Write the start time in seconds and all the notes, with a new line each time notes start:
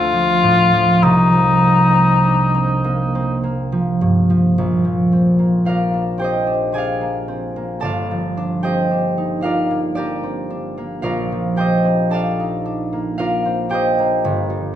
Already playing: D2 F3 A3 C4 D4 F4
0.13 F3
0.43 A2
0.73 F3
1.03 C2 D#4
1.33 F3
1.64 A#3
1.94 C4
2.24 D4
2.54 C4
2.84 A#3
3.15 C4
3.44 A#3
3.72 F3
4.01 G2
4.30 F3
4.58 A#1
4.85 F3
5.12 C4
5.39 A#3
5.65 C4 F4 A#4 D5 F5
5.94 D4
6.18 C4 G4 C5 G5
6.24 D#5
6.47 D4
6.72 C4 G#4 D5 G#5
6.78 F5
7.01 A#3
7.28 C4
7.56 A#3
7.80 G1 A4 D5 A5
7.84 F5
8.11 F3
8.37 D4
8.63 C4 G4 C5 D#5 G5
8.91 D4
9.18 D#4
9.41 D4 F4 A#4 F5
9.45 D5
9.71 A#3
9.95 D4 G4 A#4 D5
10.23 C4
10.50 D4
10.78 A#3
11.02 A#1 F4 A#4 D5 F5
11.32 F3
11.56 D4 G4 C5 D#5 G5
11.85 C4
12.10 D4 A4 D5 F5 A5
12.40 D#4
12.66 D4
12.93 A#3
13.18 D4 F4 A#4 D5 F5
13.45 C4
13.69 D4 G4 C5 G5
13.74 D#5
13.98 A#3
14.24 G1
14.50 G3